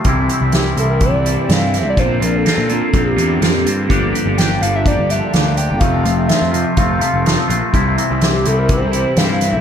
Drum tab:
HH |xxxxxxxx|xxxxxxxx|xxxxxxxx|xxxxxxxx|
SD |--o---oo|--o---o-|--o---o-|--o---o-|
BD |o---o---|o---o---|o---o---|o---o---|

HH |xxxxxxxx|
SD |--o---oo|
BD |o---o---|